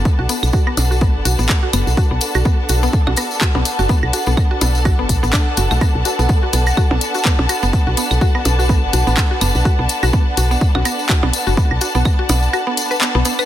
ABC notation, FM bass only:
X:1
M:4/4
L:1/16
Q:"Swing 16ths" 1/4=125
K:Bm
V:1 name="FM bass" clef=bass
z B,,, z B,,, z2 B,,,3 F,,, B,,, A,,, z2 F,,, B,,, | z B,,, z B,,, z2 B,,,2 z B,,, z3 B,,, z F,,, | z B,,, z B,,, z2 B,,,3 F,,, B,,, A,,, z2 F,,, B,,, | z B,,, z B,,, z2 B,,,2 z B,,, z3 B,,, z F,,, |
z B,,, z B,,, z2 B,,,3 F,,, B,,, A,,, z2 F,,, B,,, | z B,,, z B,,, z2 B,,,2 z B,,, z3 B,,, z F,,, | z B,,, z B,,, z2 B,,,2 z4 z B,,, z2 |]